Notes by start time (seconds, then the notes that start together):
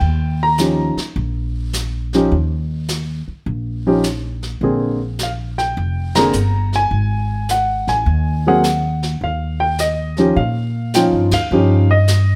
Already playing: G5
0.01 D#2, brush sweep
0.43 A#5
0.58 F3 C#4 D#4 G4, snare, hi-hat pedal
0.97 muted upright bass stroke, snare
1.16 A#1, brush sweep
1.73 snare, hi-hat pedal
2.13 F3 C#4 D#4 G4, snare
2.31 D#2, brush sweep
2.88 snare, hi-hat pedal
3.28 muted upright bass stroke
3.46 A#1, brush sweep
3.87 F3 C#4 D#4 G4
4.04 snare, hi-hat pedal
4.43 snare
4.61 A#1 D3 A#3 C4 G#4, brush sweep
5.19 snare, hi-hat pedal
5.23 F5
5.58 G5, snare
5.77 F1, brush sweep
6.15 D3 A#3 C4 G#4 A#5, snare, ride
6.33 G1, hi-hat pedal
6.73 G#5, snare
6.91 G#1, brush sweep
7.49 F#5, snare, hi-hat pedal
7.87 A1 G#5, snare
8.06 D#2, brush sweep
8.47 F#3 A#3 C4 G#4 F#5
8.63 snare, hi-hat pedal
9.03 snare
9.21 D#2 F5, brush sweep
9.60 G5
9.78 D#5, snare, hi-hat pedal
10.17 F3 C#4 D#4 G4, snare
10.36 A#2 F5, brush sweep
10.94 F3 C#4 D#4 F4 G5, snare, hi-hat pedal
11.13 G2
11.31 D2 F5, snare, ride
11.50 G2 F3 C#4 D#4 G4, brush sweep
11.91 D#5
12.07 snare, hi-hat pedal